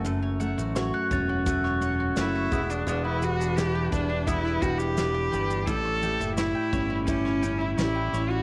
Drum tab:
SH |x-xxx-x-x-x-x-xx|x-xxx-x-x-xxx-xx|x-xxx-x-x-x-x-x-|
SD |----o----o--o---|----o----o--o---|----o----o--o---|
BD |------o-o-----o-|------o-o-o-----|o-----o-o-------|